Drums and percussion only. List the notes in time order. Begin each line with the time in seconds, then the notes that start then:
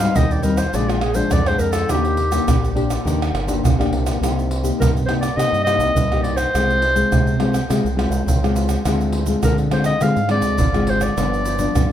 0.00 pandeiro, tamborim, shaker, surdo
0.16 pandeiro, tamborim, shaker, surdo
0.31 pandeiro, shaker
0.43 pandeiro, shaker
0.57 pandeiro, tamborim, shaker, surdo
0.74 pandeiro, shaker, surdo
0.89 pandeiro, tamborim, shaker
1.01 pandeiro, tamborim
1.14 pandeiro, shaker, surdo
1.31 pandeiro, tamborim, shaker, surdo
1.46 pandeiro, tamborim, shaker
1.59 pandeiro, shaker
1.73 pandeiro, tamborim, shaker, surdo
1.89 pandeiro, tamborim, shaker, surdo
2.05 pandeiro, shaker
2.17 pandeiro
2.32 pandeiro, tamborim, shaker, surdo
2.48 pandeiro, tamborim, shaker, surdo
2.64 pandeiro, shaker
2.77 pandeiro
2.90 pandeiro, tamborim, shaker, surdo
3.07 pandeiro, shaker, surdo
3.22 pandeiro, tamborim, shaker
3.35 pandeiro, tamborim
3.48 pandeiro, shaker, surdo
3.65 pandeiro, tamborim, shaker, surdo
3.81 pandeiro, tamborim, shaker
3.93 pandeiro
4.07 pandeiro, tamborim, shaker, surdo
4.23 pandeiro, tamborim, shaker, surdo
4.39 pandeiro, shaker
4.51 pandeiro
4.65 pandeiro, shaker, surdo
4.82 pandeiro, tamborim, shaker, surdo
4.97 pandeiro, shaker
5.09 pandeiro, tamborim
5.23 pandeiro, tamborim, shaker, surdo
5.39 pandeiro, tamborim, shaker, surdo
5.54 pandeiro, shaker
5.67 pandeiro, tamborim, shaker
5.80 pandeiro, shaker, surdo
5.97 pandeiro, shaker, surdo
6.12 pandeiro, tamborim, shaker
6.24 pandeiro
6.38 pandeiro, tamborim, shaker, surdo
6.55 pandeiro, tamborim, shaker, surdo
6.70 pandeiro, shaker
6.82 pandeiro
6.96 pandeiro, shaker, surdo
7.12 pandeiro, tamborim, shaker, surdo
7.27 pandeiro, shaker
7.40 pandeiro, tamborim
7.54 pandeiro, tamborim, shaker, surdo
7.70 pandeiro, tamborim, shaker, surdo
7.86 pandeiro, shaker
7.99 pandeiro, tamborim, surdo
8.12 pandeiro, shaker, surdo
8.28 pandeiro, shaker, surdo
8.44 pandeiro, tamborim, shaker
8.56 pandeiro, shaker
8.69 pandeiro, tamborim, shaker, surdo
8.85 pandeiro, tamborim, shaker, surdo
9.01 pandeiro, shaker
9.13 pandeiro
9.26 pandeiro, shaker, surdo
9.43 pandeiro, tamborim, shaker, surdo
9.58 pandeiro, shaker
9.71 pandeiro, tamborim
9.84 pandeiro, tamborim, shaker, surdo
10.01 pandeiro, tamborim, shaker, surdo
10.16 pandeiro, shaker
10.29 pandeiro, tamborim
10.42 pandeiro, shaker, surdo
10.58 pandeiro, shaker, surdo
10.74 pandeiro, tamborim, shaker
10.87 pandeiro
11.01 pandeiro, tamborim, shaker, surdo
11.18 pandeiro, tamborim, shaker, surdo
11.34 pandeiro, shaker
11.45 pandeiro, shaker
11.59 pandeiro, shaker, surdo
11.75 pandeiro, tamborim, shaker, surdo